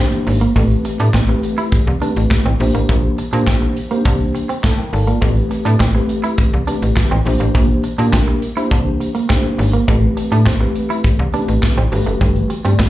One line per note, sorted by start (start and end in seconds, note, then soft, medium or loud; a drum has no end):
0.00 0.40 A#3 medium
0.00 0.40 D4 medium
0.00 0.40 G4 medium
0.00 0.40 C5 medium
0.12 closed hi-hat soft
0.27 0.47 G#1 medium
0.27 muted clean electric guitar stroke soft
0.27 open hi-hat medium
0.41 0.51 A#3 medium
0.41 closed hi-hat soft
0.56 0.76 A1 loud
0.56 1.09 A3 medium
0.56 0.66 A3 medium
0.56 1.09 C4 medium
0.56 1.09 G4 medium
0.56 1.09 B4 medium
0.56 kick loud
0.56 closed hi-hat medium
0.71 closed hi-hat soft
0.85 muted clean electric guitar stroke soft
0.85 closed hi-hat medium
0.99 1.10 A2 medium
0.99 1.10 D4 medium
0.99 closed hi-hat medium
1.14 1.35 A1 medium
1.14 1.24 C4 medium
1.14 kick loud
1.14 snare loud
1.14 clap medium
1.14 closed hi-hat medium
1.28 1.81 A3 medium
1.28 1.81 C4 medium
1.28 1.82 G4 medium
1.28 1.82 B4 medium
1.28 muted clean electric guitar stroke soft
1.43 closed hi-hat medium
1.58 1.68 E4 medium
1.58 closed hi-hat medium
1.72 kick loud
1.72 closed hi-hat medium
1.87 1.97 C2 medium
2.01 2.44 A3 medium
2.01 2.44 C4 medium
2.01 2.12 D4 medium
2.01 2.44 G4 medium
2.01 2.44 B4 medium
2.01 closed hi-hat medium
2.16 2.27 A1 medium
2.16 closed hi-hat medium
2.31 kick loud
2.31 snare loud
2.31 clap medium
2.31 closed hi-hat loud
2.45 2.56 A1 medium
2.45 2.55 C4 medium
2.45 closed hi-hat soft
2.60 2.70 A#1 loud
2.60 3.18 A#3 loud
2.60 3.18 D4 medium
2.60 3.18 G4 medium
2.60 3.18 C5 loud
2.60 muted clean electric guitar stroke soft
2.60 open hi-hat medium
2.74 2.85 A1 medium
2.74 2.84 A#3 medium
2.74 closed hi-hat soft
2.89 3.10 A#1 loud
2.89 2.99 A#3 medium
2.89 kick loud
2.89 closed hi-hat medium
3.18 muted clean electric guitar stroke soft
3.18 closed hi-hat medium
3.33 3.43 A#2 loud
3.33 3.75 A#3 medium
3.33 3.43 D4 medium
3.33 3.75 D4 medium
3.33 3.75 G4 medium
3.33 3.75 C5 medium
3.33 closed hi-hat medium
3.47 3.68 A#1 medium
3.47 3.57 C4 medium
3.47 kick loud
3.47 snare loud
3.47 clap medium
3.47 closed hi-hat medium
3.62 muted clean electric guitar stroke soft
3.77 closed hi-hat medium
3.91 4.44 A#3 medium
3.91 4.01 A#3 medium
3.91 3.98 C4 medium
3.91 4.44 G4 medium
3.91 4.44 C5 medium
3.91 closed hi-hat medium
3.97 4.47 D4 medium
4.05 4.26 C2 loud
4.05 4.15 D4 medium
4.05 kick loud
4.05 closed hi-hat medium
4.21 closed hi-hat soft
4.35 muted clean electric guitar stroke soft
4.35 closed hi-hat medium
4.49 4.59 C4 medium
4.49 closed hi-hat medium
4.64 4.74 A3 medium
4.64 4.78 C5 soft
4.64 4.77 G5 medium
4.64 4.78 A5 medium
4.64 kick loud
4.64 snare loud
4.64 clap medium
4.64 closed hi-hat medium
4.78 4.93 A#4 medium
4.78 4.92 G5 medium
4.78 closed hi-hat soft
4.93 5.13 G#1 medium
4.93 5.07 A4 medium
4.93 5.07 F5 medium
4.93 5.20 A5 medium
4.93 muted clean electric guitar stroke soft
4.93 open hi-hat medium
5.07 5.17 A#3 medium
5.07 5.36 F4 medium
5.07 5.35 D5 medium
5.07 closed hi-hat soft
5.22 5.42 A1 loud
5.22 5.32 A3 medium
5.22 5.75 A3 medium
5.22 5.75 C4 medium
5.22 5.75 G4 medium
5.22 5.75 B4 medium
5.22 kick loud
5.22 closed hi-hat medium
5.37 closed hi-hat soft
5.51 muted clean electric guitar stroke soft
5.51 closed hi-hat medium
5.65 5.76 A2 loud
5.65 5.75 D4 medium
5.65 closed hi-hat medium
5.80 6.01 A1 medium
5.80 5.90 C4 medium
5.80 kick loud
5.80 snare loud
5.80 clap medium
5.80 closed hi-hat medium
5.95 6.48 A3 medium
5.95 6.48 C4 medium
5.95 6.48 G4 medium
5.95 6.48 B4 medium
5.95 muted clean electric guitar stroke soft
6.09 closed hi-hat medium
6.24 6.34 E4 medium
6.24 closed hi-hat medium
6.38 kick loud
6.38 closed hi-hat medium
6.53 6.63 C2 medium
6.67 7.10 A3 medium
6.67 7.10 C4 medium
6.67 6.77 D4 medium
6.67 7.10 G4 medium
6.67 7.10 B4 medium
6.67 closed hi-hat medium
6.82 6.92 A1 medium
6.82 closed hi-hat medium
6.97 kick loud
6.97 snare loud
6.97 clap loud
6.97 closed hi-hat loud
7.11 7.22 A1 medium
7.11 7.21 C4 medium
7.11 closed hi-hat soft
7.25 7.36 A#1 loud
7.25 7.84 A#3 medium
7.25 7.84 D4 medium
7.25 7.84 G4 medium
7.25 7.84 C5 loud
7.25 muted clean electric guitar stroke soft
7.25 open hi-hat medium
7.40 7.51 A1 medium
7.40 7.50 A#3 medium
7.40 closed hi-hat soft
7.55 7.75 A#1 loud
7.55 7.65 A#3 medium
7.55 kick loud
7.55 closed hi-hat medium
7.84 muted clean electric guitar stroke soft
7.84 closed hi-hat medium
7.98 8.09 A#2 medium
7.98 8.41 A#3 medium
7.98 8.08 D4 medium
7.98 8.41 D4 medium
7.98 8.41 G4 medium
7.98 8.41 A#4 medium
7.98 closed hi-hat medium
8.13 8.34 A#1 medium
8.13 8.23 C4 medium
8.13 kick loud
8.13 snare loud
8.13 clap medium
8.13 closed hi-hat loud
8.28 muted clean electric guitar stroke soft
8.42 closed hi-hat medium
8.56 9.10 A#3 medium
8.56 9.10 D4 medium
8.56 8.67 E4 medium
8.56 9.10 G4 medium
8.56 9.10 C5 medium
8.56 closed hi-hat medium
8.71 8.92 C2 loud
8.71 8.81 D4 medium
8.71 kick loud
8.71 closed hi-hat medium
9.00 muted clean electric guitar stroke soft
9.00 closed hi-hat medium
9.15 9.25 A#3 medium
9.15 closed hi-hat medium
9.29 9.72 A#3 medium
9.29 9.39 C4 medium
9.29 9.72 D4 medium
9.29 9.72 G4 medium
9.29 9.72 C5 medium
9.29 kick loud
9.29 snare loud
9.29 clap medium
9.29 closed hi-hat medium
9.58 9.79 G#1 loud
9.58 muted clean electric guitar stroke soft
9.58 open hi-hat medium
9.73 9.83 A#3 medium
9.73 closed hi-hat soft
9.88 10.08 A1 loud
9.88 10.41 A3 medium
9.88 9.98 A3 medium
9.88 10.41 C4 medium
9.88 10.41 G4 medium
9.88 10.41 B4 medium
9.88 kick loud
9.88 closed hi-hat medium
10.17 muted clean electric guitar stroke soft
10.17 closed hi-hat medium
10.32 10.48 A2 medium
10.32 10.42 D4 medium
10.32 closed hi-hat medium
10.46 10.67 A1 medium
10.46 10.56 C4 medium
10.46 kick loud
10.46 snare loud
10.46 clap medium
10.46 closed hi-hat loud
10.61 11.13 A3 medium
10.61 11.14 C4 medium
10.61 11.14 G4 medium
10.61 11.14 B4 medium
10.61 muted clean electric guitar stroke soft
10.75 closed hi-hat medium
10.90 11.00 E4 medium
10.90 closed hi-hat medium
11.04 kick loud
11.04 closed hi-hat medium
11.19 11.29 C2 medium
11.33 11.76 A3 medium
11.33 11.40 B3 medium
11.33 11.44 D4 medium
11.33 11.76 G4 medium
11.33 11.76 B4 medium
11.33 closed hi-hat medium
11.40 11.79 C4 medium
11.48 11.58 A1 medium
11.48 closed hi-hat medium
11.63 kick loud
11.63 snare loud
11.63 clap medium
11.63 closed hi-hat medium
11.78 11.88 A1 medium
11.78 11.87 C4 medium
11.92 12.02 G1 medium
11.92 12.50 A3 medium
11.92 12.50 F#4 medium
11.92 12.50 G4 medium
11.92 12.50 B4 loud
11.92 muted clean electric guitar stroke soft
11.92 open hi-hat medium
12.06 12.17 F#1 medium
12.06 12.16 A3 medium
12.06 closed hi-hat soft
12.21 12.41 G1 loud
12.21 12.31 G3 medium
12.21 kick loud
12.21 closed hi-hat medium
12.36 closed hi-hat soft
12.50 muted clean electric guitar stroke soft
12.50 closed hi-hat medium
12.64 12.75 G2 medium
12.64 12.89 A3 medium
12.64 12.75 C4 medium
12.64 12.89 F#4 medium
12.64 12.89 G4 medium
12.64 12.89 D5 medium
12.64 closed hi-hat medium
12.79 12.89 G1 medium
12.79 12.89 B3 medium
12.79 kick loud
12.79 snare loud
12.79 clap medium
12.79 closed hi-hat medium